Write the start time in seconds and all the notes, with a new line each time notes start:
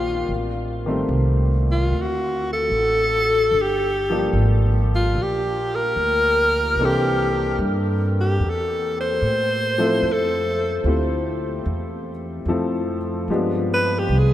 Already playing: A#1 D#3 A#3 C4 D4 F4 G4
0.29 A1
0.86 D#3 G3 A3 C4 G4
1.09 C2
1.71 F4
1.90 D2
2.02 F#4
2.53 A4
2.70 A1
3.51 G1
3.62 G4
4.10 F3 G3 A#3 D4 G4
4.33 G#1
4.95 F4
5.15 A#1
5.22 G4
5.75 A#4
5.96 D2
6.76 C2 E3 A#3
6.80 C4 D4 A4
6.85 G4
7.58 G2
8.20 G4
8.40 E2
8.49 A4
9.00 C5
9.22 A2
9.78 F3 A3 C4 E4 A4
10.02 F2
10.12 A4
10.84 D2 A3 C4 E4 F4 G4
11.66 E2
12.45 F2 F3 A3 C4 E4 A4
13.28 G2 F3 G#3 B3 D4 G4
13.74 B4
13.99 G4
14.09 C2
14.18 G#4